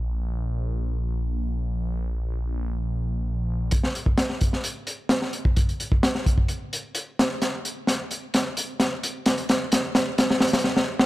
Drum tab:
HH |--------------------------------|--------------------------------|x---x---x---x---x---x---x---x---|x-x-x---x---x---x---x---x---x---|
SD |--------------------------------|--------------------------------|--o-----o-o---o---------o-o-----|--------o-o-----------------o---|
BD |--------------------------------|--------------------------------|o-----o-----o-----------------o-|o-----o-----o-o-----------------|

HH |x---x---x---x---x---x---x---x---|x-x-x---x---x---x---xxxx--------|
SD |o-------o-------o-------o-------|o---o---o---o---o-o-o-o-o-o---o-|
BD |--------------------------------|--------------------------------|